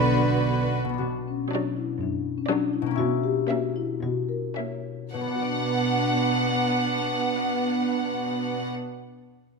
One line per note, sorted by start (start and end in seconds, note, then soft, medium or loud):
0.00 0.78 B1 soft
0.00 0.83 B2 soft
0.00 0.49 D3 medium
0.00 0.50 D3 medium
0.00 0.78 B3 soft
0.00 0.88 B3 soft
0.00 0.50 D4 medium
0.00 0.74 D4 soft
0.00 0.92 D4 soft
0.00 0.78 F#4 soft
0.00 0.97 F#4 soft
0.00 0.74 B4 medium
0.00 0.78 B4 soft
0.00 0.78 D5 medium
0.85 2.81 B2 soft
0.89 2.95 B3 soft
0.94 2.97 D4 soft
0.98 1.41 B2 medium
0.98 4.88 F#4 soft
1.28 1.50 C#4 medium
1.51 1.87 F#3 soft
1.51 1.87 D4 soft
1.51 1.74 D4 soft
1.51 1.88 D5 soft
1.77 1.99 E4 medium
2.00 2.39 F#2 medium
2.00 2.35 D4 medium
2.38 2.49 C#4 medium
2.49 2.87 F#3 medium
2.49 2.72 D4 medium
2.49 2.86 D4 soft
2.49 2.86 D5 soft
2.73 2.97 E4 medium
2.82 5.07 B2 soft
2.86 5.10 A#3 soft
2.91 5.12 C#4 soft
2.96 3.39 B2 medium
2.96 5.14 E4 soft
2.96 3.22 F#4 medium
3.24 3.48 G4 medium
3.49 3.88 A#3 medium
3.49 3.89 C#4 soft
3.49 3.74 F#4 medium
3.49 3.89 E5 medium
3.76 4.01 E4 medium
4.03 4.46 B2 medium
4.03 4.28 F#4 medium
4.29 4.55 A#4 medium
4.56 5.00 A#3 soft
4.56 4.99 C#4 soft
4.56 5.09 C#5 soft
4.56 4.99 E5 soft
5.12 8.69 B2 soft
5.12 9.04 B2 soft
5.12 8.69 B3 soft
5.12 8.69 D4 soft
5.12 8.67 B4 soft
5.12 8.68 F#5 soft
5.21 8.76 B3 soft
5.28 8.83 D4 soft
5.35 8.90 F#4 soft
5.42 8.97 D5 soft